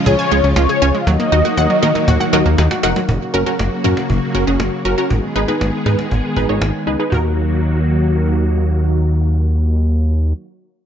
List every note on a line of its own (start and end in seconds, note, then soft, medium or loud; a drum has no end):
0.00 1.05 C#3 medium
0.00 1.05 F3 medium
0.00 1.03 G#3 medium
0.00 1.05 F4 medium
0.06 0.16 C#2 loud
0.06 0.18 G#4 loud
0.06 0.53 C#5 loud
0.06 cajon bass loud
0.19 0.30 G#5 medium
0.31 0.41 C#2 loud
0.31 0.43 G#3 medium
0.31 0.52 C#4 medium
0.31 0.52 F4 medium
0.31 0.52 G#4 medium
0.31 0.52 C#5 medium
0.44 0.54 C#2 loud
0.44 0.56 C#4 medium
0.56 0.67 C#2 loud
0.56 0.68 F4 medium
0.56 0.97 C#5 medium
0.56 cajon slap loud
0.69 0.81 G#4 medium
0.82 0.92 C#2 medium
0.82 1.02 C#4 medium
0.82 1.02 F4 medium
0.82 1.02 G#4 medium
0.82 1.02 C#5 medium
0.82 0.93 G#5 medium
0.82 cajon slap soft
0.95 1.06 G#3 medium
1.00 1.07 F5 medium
1.07 1.17 D#2 loud
1.07 3.07 D#3 medium
1.07 1.19 F#3 loud
1.07 3.07 F#3 medium
1.07 3.07 A#3 medium
1.07 3.07 F#4 loud
1.07 2.54 D#5 loud
1.07 cajon bass loud
1.07 cajon slap medium
1.20 1.31 A#3 medium
1.20 cajon slap medium
1.32 1.42 D#2 loud
1.32 1.52 D#4 medium
1.32 1.52 F#4 medium
1.32 1.52 A#4 medium
1.32 1.52 D#5 medium
1.45 1.56 F#4 medium
1.45 cajon slap medium
1.57 1.67 D#2 loud
1.57 1.69 F#5 loud
1.57 cajon slap medium
1.70 1.82 F#3 medium
1.83 1.93 D#3 loud
1.83 1.94 A#3 medium
1.83 2.03 D#4 medium
1.83 2.03 F#4 medium
1.83 2.03 A#4 medium
1.83 2.03 D#5 loud
1.83 cajon slap medium
1.95 2.07 D#4 medium
1.95 cajon slap medium
2.08 2.18 D#2 loud
2.08 2.19 F#4 loud
2.08 cajon bass loud
2.20 2.32 F#5 medium
2.20 cajon slap medium
2.33 2.43 D#2 loud
2.33 2.45 F#3 medium
2.33 2.53 D#4 medium
2.33 2.53 F#4 medium
2.33 2.53 A#4 medium
2.33 2.53 D#5 loud
2.33 cajon slap loud
2.46 2.56 D#2 loud
2.46 2.57 A#3 medium
2.58 2.68 D#2 loud
2.58 2.70 D#4 medium
2.58 cajon slap loud
2.71 2.82 F#4 medium
2.71 cajon slap loud
2.83 2.93 F1 loud
2.83 3.03 D#4 loud
2.83 3.03 F#4 medium
2.83 3.03 A#4 medium
2.83 3.03 F#5 loud
2.83 2.95 F#5 medium
2.83 cajon slap loud
2.96 3.08 F#3 medium
2.96 cajon slap loud
3.08 3.19 F#1 loud
3.08 5.08 C#3 medium
3.08 5.08 F#3 medium
3.08 5.08 A#3 medium
3.08 5.08 F#4 medium
3.08 cajon bass loud
3.34 3.44 F#1 loud
3.34 3.44 C#4 medium
3.34 3.44 F#4 medium
3.34 3.44 A#4 loud
3.34 cajon slap soft
3.46 3.67 C#4 medium
3.46 3.67 F#4 medium
3.46 3.67 A#4 medium
3.46 cajon slap medium
3.59 3.69 F#1 medium
3.59 cajon slap loud
3.84 3.94 F#2 loud
3.84 4.04 C#4 medium
3.84 4.04 F#4 medium
3.84 4.04 A#4 loud
3.84 cajon bass medium
3.97 cajon slap medium
4.10 4.19 F#1 loud
4.10 cajon bass medium
4.35 4.45 F#1 medium
4.35 4.45 C#4 medium
4.35 4.45 F#4 medium
4.35 4.45 A#4 loud
4.47 4.57 F#1 loud
4.47 4.67 C#4 medium
4.47 4.67 F#4 medium
4.47 4.67 G#4 medium
4.60 4.70 F#1 loud
4.60 cajon slap loud
4.85 4.95 F#1 medium
4.85 4.95 C#4 medium
4.85 4.95 F#4 medium
4.85 4.95 A#4 loud
4.98 5.10 C#4 medium
4.98 5.10 F#4 medium
4.98 5.10 A#4 medium
5.10 5.20 G#1 loud
5.10 7.10 D#3 medium
5.10 7.10 G#3 medium
5.10 7.10 B3 medium
5.10 7.10 G#4 medium
5.10 cajon bass loud
5.36 5.45 G#1 loud
5.36 5.46 D#4 medium
5.36 5.46 G#4 medium
5.36 5.46 B4 loud
5.48 5.68 D#4 medium
5.48 5.68 G#4 medium
5.48 5.68 B4 medium
5.48 cajon slap medium
5.61 5.71 G#1 loud
5.61 cajon slap loud
5.86 5.96 G#2 medium
5.86 6.06 D#4 medium
5.86 6.06 G#4 medium
5.86 6.06 B4 medium
5.86 cajon bass medium
5.99 cajon slap medium
6.11 6.21 G#1 loud
6.11 cajon bass medium
6.36 6.46 G#1 loud
6.36 6.47 D#4 medium
6.36 6.47 G#4 medium
6.36 6.47 B4 loud
6.36 cajon bass medium
6.49 6.59 G#1 loud
6.49 6.69 D#4 medium
6.49 6.69 G#4 medium
6.49 6.69 C#5 medium
6.62 6.72 G#1 loud
6.62 cajon slap loud
6.87 6.97 C#2 medium
6.87 6.97 D#4 medium
6.87 6.97 G#4 medium
6.87 6.97 B4 loud
6.87 cajon slap soft
7.00 7.09 D#4 medium
7.00 7.12 G#4 medium
7.00 7.12 B4 medium
7.10 10.33 D#2 medium
7.10 10.33 D#3 medium
7.10 10.33 F#3 medium
7.10 10.33 A#3 medium
7.10 10.31 D#4 medium
7.10 10.33 F#4 medium
7.10 cajon bass loud
7.14 10.35 A#4 medium